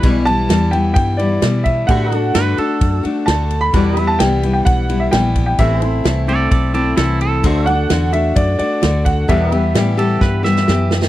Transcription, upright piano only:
X:1
M:4/4
L:1/16
Q:1/4=130
K:Em
V:1 name="Upright piano"
z2 a4 g2 g2 d4 e2 | f4 z8 a3 b- | b3 a g3 g f3 e g3 g | e12- e2 z2 |
z2 f4 e2 d2 d4 f2 | e12- e2 z2 |]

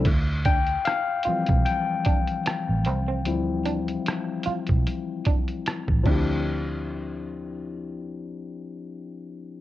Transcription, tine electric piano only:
X:1
M:4/4
L:1/8
Q:"Swing 16ths" 1/4=75
K:Dm
V:1 name="Tine electric piano"
z g f2 g4- | g6 z [F,CDEG]- | [F,CDEG]8 |]
V:2 name="Tine electric piano" clef=bass
z3 [E,F,G,C] z4 | [F,G,CE]3 z4 z | z8 |]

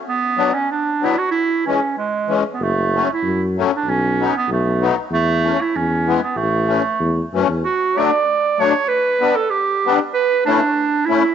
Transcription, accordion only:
X:1
M:2/4
L:1/8
Q:1/4=95
K:A
V:1 name="Accordion"
z [F,B,D] z [F,B,D] | z [E,G,C] z [E,G,C] | z [F,A,C] z [F,A,C] | z [F,B,^D] z [F,B,D] |
z [E,A,C] z [E,G,B,] | z [E,A,C] z [E,A,C] | [K:D] z [F,A,D] z [F,A,D] | z [G,B,D] z [G,B,D] |
z [A,CE] z [A,CE] |]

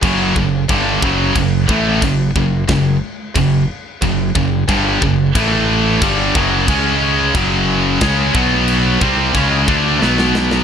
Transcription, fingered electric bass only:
X:1
M:4/4
L:1/8
Q:1/4=90
K:F#m
V:1 name="Fingered electric bass" clef=bass
F,,, F,,, =G,,, F,,, F,,, A,,, F,,, F,,, | F,,, z F,,, z F,,, F,,, =G,,, F,,, | A,,,2 =G,,, F,,, C,,2 F,,,2 | C,, B,,,2 ^B,,, C,, D,, =B,,,2 |]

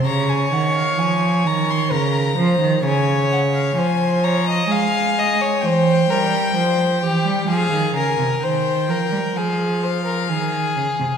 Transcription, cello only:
X:1
M:4/4
L:1/16
Q:1/4=64
K:Bbm
V:1 name="Cello" clef=bass
D,2 E,2 F,2 E,2 D,2 F, E, D,4 | F,4 A,4 =E,2 =G,2 F,2 E, G, | F, E, D, C, E,2 F, =G, F,4 E,2 D, C, |]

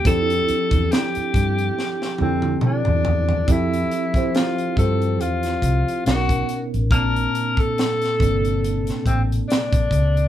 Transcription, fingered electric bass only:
X:1
M:4/4
L:1/16
Q:"Swing 16ths" 1/4=70
K:F
V:1 name="Fingered electric bass" clef=bass
F,,2 z E,, z2 G,,2 z2 F,,2 z E,, E,,2 | F,,2 z4 G,,2 E,,2 C,, z =B,,,2 z A,,, | B,,,2 z4 G,,,4 A,,,2 z B,,, _D,,2 |]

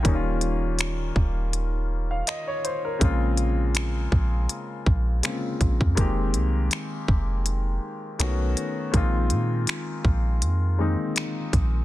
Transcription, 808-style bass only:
X:1
M:4/4
L:1/16
Q:"Swing 16ths" 1/4=81
K:Bbdor
V:1 name="808-style bass" clef=bass
E,,,6 E,,,6 z4 | B,,,6 B,,,2 z2 B,,,2 z2 B,,, F,, | F,,,2 C,,2 z2 F,,,4 z2 =B,,,2 z2 | B,,,2 B,,2 z2 B,,,2 F,,3 z3 B,,,2 |]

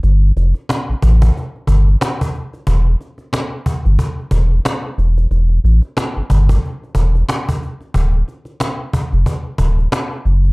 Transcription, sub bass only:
X:1
M:4/4
L:1/16
Q:"Swing 16ths" 1/4=91
K:F
V:1 name="Sub bass" clef=bass
G,,,2 F,,, z2 A,,, A,,,2 z2 G,,,2 z4 | E,,,2 z4 z G,,, z2 E,,,2 z2 E,,,2 | E,,,2 A,,, z2 G,,, G,,,2 z2 E,,,2 z4 | D,,,2 z4 z F,,, z2 D,,,2 z2 ^F,,,2 |]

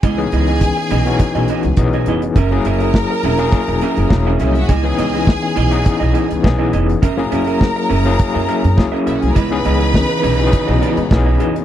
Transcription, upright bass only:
X:1
M:4/4
L:1/16
Q:1/4=103
K:C#dor
V:1 name="Upright bass" clef=bass
C,,2 C,,3 z B,,,2 z B,,, z C,, B,,,2 ^E,,,2 | F,,,2 F,,,3 z E,,,2 z E,,, z F,,, E,,,2 ^B,,,2 | C,,2 C,,3 z B,,,2 z B,,, z C,, B,,,2 ^E,,,2 | F,,,2 F,,,3 z F,,,2 z F,, z F,, C,, z B,,, ^B,,, |
C,,2 C,,3 z B,,,2 z B,,, z C,, B,,,2 ^E,,,2 |]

